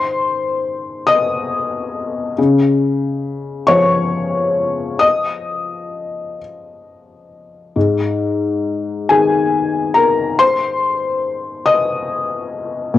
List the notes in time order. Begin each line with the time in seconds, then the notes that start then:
Already playing: D#3 C5 C6
1.07 D#5 D#6
2.38 C#3
3.67 F3 C#5 C#6
4.99 D#5 D#6
7.76 G#2
9.09 D#3 G#4 G#5
9.94 A#4 A#5
10.39 C5 C6
11.66 D#5 D#6
12.94 A#2